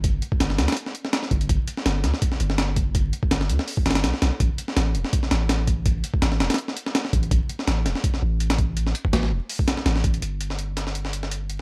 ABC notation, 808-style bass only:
X:1
M:4/4
L:1/8
Q:"Swing 16ths" 1/4=165
K:Clyd
V:1 name="808-style bass" clef=bass
G,,, z G,,, D,, z3 G,,, | G,,, z G,,, D,, z G,,,3- | G,,, z G,,, D,, z G,,, B,,, B,,, | A,,, z A,,, E,,, z A,,,3- |
A,,, z A,,, E,,, z3 A,,, | A,,, z A,,, E,,, z A,,,3- | A,,, z A,,, E,,, z2 A,,,2 | G,,,8 |]